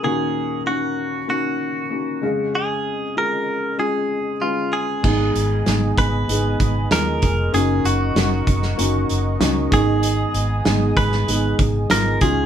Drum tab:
CC |----------------|----------------|x---------------|----------------|
HH |----------------|----------------|--x-x-x-x-x-x-x-|x-x-x-x-x-x-x-x-|
SD |----------------|----------------|----o-------o---|----o--o----o---|
BD |----------------|----------------|o-----o---o---o-|------o-------o-|

CC |----------------|
HH |x-x-x-x-x-x-x-x-|
SD |----o--o----o---|
BD |------o---o---o-|